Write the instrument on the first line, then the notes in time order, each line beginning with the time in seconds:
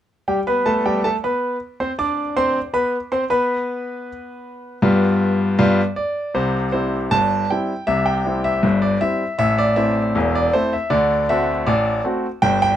grand piano
0.28 G3 G4 G5
0.47 B3 B4 B5
0.66 A3 A4 A5
0.86 G3 G4 G5
1.04 A3 A4 A5
1.24 B3 B4 B5
1.80 C4 C5 C6
1.99 D4 D5 D6
2.36 C4 C5 C6
2.73 B3 B4 B5
3.12 C4 C5 C6
3.30 B3 B4 B5
4.82 G2 G3 B3 F4
5.59 G2 G3 B3 F4
5.96 D5
6.34 C2 C3 C5
6.72 G3 C4 E4 C5
7.11 G1 G2 A5
7.50 G3 C4 E4 G5
7.87 C2 C3 E5
8.06 G5
8.25 G3 C4 E4
8.44 E5
8.63 G1 G2
8.82 D5
9.01 G3 C4 E4 E5
9.38 A1 A2 E5
9.58 D5
9.76 A3 C4 E4 E5
10.15 E1 E2
10.35 D5
10.53 A3 C4 E4 C5
10.73 E5
10.90 D2 D3 D5
11.29 A3 C4 F#4 E5
11.66 A1 A2 D5
12.04 A3 C4 F#4
12.42 G1 G2 G5
12.62 G5